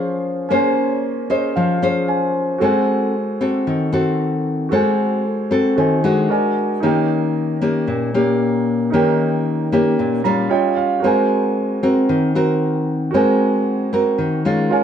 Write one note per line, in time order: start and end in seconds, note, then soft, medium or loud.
0.00 0.48 F3 medium
0.00 0.45 C#4 medium
0.00 0.46 C#4 medium
0.00 0.47 G#4 medium
0.00 0.46 A#4 soft
0.00 0.47 C5 medium
0.00 0.47 C5 soft
0.00 0.48 G#5 medium
0.49 1.53 A#3 medium
0.49 2.56 C#4 medium
0.49 1.25 C#4 medium
0.49 1.25 G#4 medium
0.49 2.57 A#4 soft
0.49 1.26 C5 medium
0.49 2.58 C5 soft
0.55 2.07 G#5 medium
1.30 1.78 C#4 medium
1.30 1.78 G#4 soft
1.30 1.78 C5 medium
1.30 1.54 D#5 medium
1.56 2.59 F3 medium
1.56 2.05 F5 medium
1.82 2.57 C#4 medium
1.82 2.57 G#4 medium
1.82 2.57 C5 medium
2.08 2.57 G#5 medium
2.58 3.64 G#3 medium
2.58 3.14 C4 medium
2.58 4.66 F#4 soft
2.58 3.14 F#4 medium
2.58 4.67 A4 soft
2.58 3.14 A4 medium
2.58 4.68 C5 soft
2.64 4.69 G#5 medium
3.41 3.89 C4 medium
3.41 3.89 F#4 medium
3.41 3.89 A4 medium
3.67 4.69 D#3 medium
3.92 4.67 C4 medium
3.92 4.68 F#4 medium
3.92 4.68 A4 medium
4.69 5.74 G#3 medium
4.69 5.24 C4 soft
4.69 5.74 F#4 soft
4.69 5.24 F#4 medium
4.69 5.74 A4 soft
4.69 5.24 A4 medium
4.73 5.76 C5 soft
4.73 5.77 G#5 medium
5.51 5.99 C4 medium
5.51 5.99 F#4 medium
5.51 6.00 A4 medium
5.76 6.27 D#3 medium
5.76 6.27 F#4 soft
5.76 6.29 A4 soft
5.76 6.30 C5 soft
5.76 6.30 G#5 soft
6.04 6.78 G#3 medium
6.04 6.79 D4 medium
6.04 6.79 F#4 medium
6.29 6.82 F#4 medium
6.29 6.81 A#4 medium
6.29 6.83 D5 soft
6.29 6.83 G#5 medium
6.80 7.85 D#3 medium
6.80 7.57 A#3 medium
6.80 7.58 C#4 medium
6.80 8.88 D#4 medium
6.80 7.58 G4 medium
6.80 8.89 A#4 soft
6.80 8.90 C#5 soft
6.86 8.91 G5 medium
7.61 8.10 A#3 medium
7.61 8.10 C#4 medium
7.61 8.10 G4 medium
7.87 8.90 A#2 medium
8.14 8.89 A#3 medium
8.14 8.89 C#4 medium
8.14 8.89 G4 medium
8.90 9.96 D#3 medium
8.90 9.68 A#3 medium
8.90 9.68 C#4 medium
8.90 10.46 D#4 medium
8.90 10.47 A#4 soft
8.94 9.68 G4 medium
8.94 10.48 C#5 soft
8.94 10.49 G5 medium
9.72 10.21 A#3 medium
9.72 10.21 C#4 medium
9.72 10.21 G4 medium
9.99 10.49 A#2 medium
10.24 10.99 G3 medium
10.24 11.00 C#4 medium
10.24 11.00 F4 medium
10.24 10.49 A#5 medium
10.49 11.03 F4 medium
10.49 11.03 C#5 medium
10.49 11.03 D#5 medium
10.49 11.04 G5 medium
10.77 11.01 F5 medium
11.00 12.06 G#3 medium
11.00 13.08 F#4 soft
11.00 13.09 A#4 soft
11.04 11.78 C4 medium
11.04 11.78 F#4 soft
11.04 11.79 A#4 medium
11.04 13.10 C5 soft
11.04 13.11 G#5 medium
11.83 12.31 C4 medium
11.83 12.31 F#4 medium
11.83 12.31 A#4 medium
12.09 13.12 D#3 medium
12.35 13.10 C4 medium
12.35 13.10 F#4 medium
12.35 13.10 A#4 medium
13.11 14.17 G#3 medium
13.11 13.89 C4 soft
13.11 14.67 F#4 medium
13.11 13.89 F#4 medium
13.11 14.68 A#4 soft
13.11 14.69 C5 soft
13.15 13.89 A#4 medium
13.15 14.70 G#5 medium
13.93 14.41 C4 medium
13.93 14.41 F#4 medium
13.93 14.42 A#4 medium
14.18 14.69 D#3 medium
14.45 14.84 G#3 medium
14.45 14.84 C#4 medium
14.45 14.84 F4 medium
14.70 14.84 F4 soft
14.70 14.84 A#4 soft
14.70 14.84 C#5 soft
14.70 14.84 F5 medium
14.70 14.84 G#5 medium